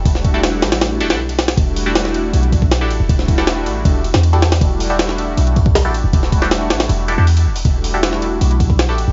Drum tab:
RD |x-x-x-xxx-xx-xxx|x---x-x-xxx-x-x-|x-x-x-x-x-x-xxxx|x---x-x-xxx-x-x-|
HH |----------------|--o-------------|----------------|--o-------------|
SD |-o--o-ooo--o--oo|----oo------o---|-o-oo------o--oo|----oo------o---|
BD |o-o-------------|o---------oo----|o-o-----o-------|o---------oo----|

RD |x-x-x-xxx-x--x--|x---x-x-xxx-x-x-|
HH |------------o--o|--o-------------|
SD |-o-oo-oo--------|----oo------o---|
BD |o-o-------------|o---------oo----|